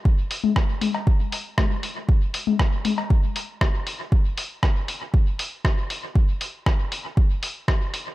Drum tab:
HH |--o---o---o---o-|--o---o---o---o-|--o---o---o---o-|--o---o---o---o-|
CB |-------x--------|-------x--------|----------------|----------------|
SD |----r-------r---|----r-------r---|----r-------r---|----r-------r---|
T1 |---o--o-----o---|---o--o---------|----------------|----------------|
BD |o---o---o---o---|o---o---o---o---|o---o---o---o---|o---o---o---o---|